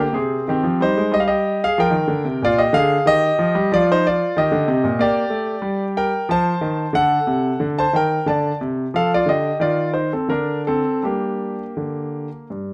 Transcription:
0.00 0.15 A#3 medium
0.00 0.16 G4 medium
0.13 0.38 C3 medium
0.13 0.46 C4 medium
0.13 0.48 G#4 medium
0.48 0.64 D#3 medium
0.48 0.80 C4 medium
0.48 0.82 G4 medium
0.63 0.80 F3 medium
0.81 0.97 G3 medium
0.81 1.12 D#4 medium
0.81 1.14 C5 medium
0.98 1.13 G#3 medium
1.12 1.59 G3 medium
1.12 1.21 D#5 medium
1.20 1.27 F5 medium
1.28 1.61 G4 medium
1.28 1.62 D#5 medium
1.64 1.79 G#4 medium
1.64 1.79 F5 loud
1.78 1.94 F3 medium
1.78 2.39 A#4 medium
1.78 2.44 G5 medium
1.90 2.08 D#3 medium
2.08 2.24 D3 medium
2.25 2.41 C3 medium
2.42 2.66 A#2 medium
2.42 2.59 F4 medium
2.42 2.60 D5 loud
2.58 2.74 G4 medium
2.58 2.75 D#5 medium
2.73 2.97 D3 medium
2.73 3.06 G#4 medium
2.73 3.07 F5 loud
3.06 3.29 D#3 medium
3.06 3.67 G4 medium
3.06 3.71 D#5 loud
3.39 3.54 F3 medium
3.55 3.70 G3 medium
3.72 4.18 F3 medium
3.72 3.88 F4 medium
3.72 3.88 D5 loud
3.92 4.05 D#4 medium
3.92 4.05 C5 loud
4.07 4.36 F4 medium
4.07 4.37 D5 medium
4.37 4.51 D#3 medium
4.37 4.98 G4 medium
4.37 5.01 D#5 medium
4.52 4.67 D3 medium
4.68 4.83 C3 medium
4.84 4.99 A#2 medium
4.99 5.23 A#3 medium
4.99 5.94 G4 medium
4.99 5.83 D5 loud
5.30 5.54 A3 medium
5.62 6.09 G3 medium
5.97 6.27 A#4 medium
5.97 6.29 G5 medium
6.29 6.52 F3 medium
6.29 6.92 C5 medium
6.29 6.86 A5 loud
6.61 6.85 D#3 medium
6.93 7.17 D3 medium
6.93 7.74 A4 medium
6.93 7.65 F#5 loud
7.27 7.51 C3 medium
7.60 7.84 D3 medium
7.79 7.94 C5 medium
7.79 7.95 A5 medium
7.93 8.18 D#3 medium
7.93 8.26 A#4 medium
7.93 8.28 G5 medium
8.26 8.51 D3 medium
8.26 8.59 D5 medium
8.26 8.56 A5 medium
8.61 8.85 C3 medium
8.94 9.18 F3 medium
8.94 9.11 A4 medium
8.94 9.12 F5 medium
9.14 9.28 F4 medium
9.14 9.29 D5 medium
9.26 9.50 D3 medium
9.26 9.59 G4 medium
9.26 9.56 D#5 medium
9.60 10.09 D#3 medium
9.60 9.92 F4 medium
9.60 9.90 D5 medium
9.94 10.10 D#4 soft
9.94 10.11 C5 medium
10.13 10.29 C4 soft
10.13 10.30 A4 medium
10.28 10.82 D3 medium
10.28 10.64 D4 medium
10.28 10.60 A#4 medium
10.67 11.02 C4 medium
10.67 11.04 A4 medium
11.03 11.55 G3 soft
11.03 12.47 A#3 medium
11.03 11.62 D4 soft
11.03 12.28 G4 medium
11.77 12.27 D3 soft
12.50 12.74 G2 soft

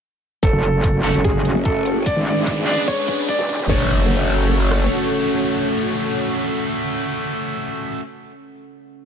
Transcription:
0.43 0.52 F#1 medium
0.43 2.05 A3 medium
0.43 2.06 C#4 medium
0.43 2.05 C#4 medium
0.43 2.05 F#4 medium
0.43 0.59 A4 loud
0.43 kick loud
0.43 closed hi-hat medium
0.43 riser medium
0.53 1.13 F#1 loud
0.63 0.95 A4 medium
0.63 closed hi-hat medium
0.81 2.06 A3 medium
0.81 kick loud
0.81 closed hi-hat medium
1.04 1.12 A3 medium
1.04 1.12 C#4 medium
1.04 1.12 F#4 medium
1.04 1.20 A4 medium
1.04 closed hi-hat medium
1.15 1.54 F#1 loud
1.15 2.71 F#5 medium
1.24 1.56 G#4 medium
1.24 kick loud
1.24 closed hi-hat medium
1.45 closed hi-hat medium
1.55 2.05 F#1 medium
1.65 1.97 A4 loud
1.65 kick medium
1.65 closed hi-hat medium
1.86 closed hi-hat medium
2.06 3.68 G#3 medium
2.06 3.69 D4 medium
2.06 3.68 D4 medium
2.06 3.68 G#4 medium
2.06 3.68 B4 medium
2.06 2.22 D5 loud
2.06 kick loud
2.06 closed hi-hat medium
2.16 2.76 G#1 loud
2.27 2.58 D5 medium
2.27 closed hi-hat medium
2.46 3.69 B4 medium
2.46 kick loud
2.46 closed hi-hat medium
2.67 2.81 B3 medium
2.67 2.81 D4 medium
2.67 2.81 G#4 medium
2.67 2.83 D5 medium
2.67 closed hi-hat medium
2.88 3.19 C#5 loud
2.88 kick loud
2.88 closed hi-hat medium
3.08 kick loud
3.08 closed hi-hat medium
3.29 3.60 D5 loud
3.29 kick loud
3.29 closed hi-hat medium
3.39 3.68 F#1 loud
3.39 kick medium
3.49 kick loud
3.49 closed hi-hat medium
3.59 kick medium
3.69 4.88 F#1 medium
3.69 8.00 A3 medium
3.69 7.72 C#4 medium
3.69 8.00 C#4 medium
3.69 7.72 F#4 medium
3.69 8.00 F#4 medium
3.69 7.72 A4 medium
3.69 7.72 C#5 medium
3.69 8.01 C#5 loud
3.69 kick loud
3.69 crash medium
3.69 impact medium
3.75 7.72 A4 medium
3.82 7.72 F#5 medium
4.71 cross-stick medium

